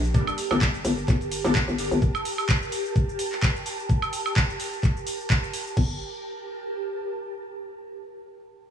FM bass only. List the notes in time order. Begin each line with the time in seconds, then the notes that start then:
Already playing: A#1
0.51 G1
0.85 G1
1.08 G1
1.45 G1
1.68 G1
1.91 G1
5.77 G1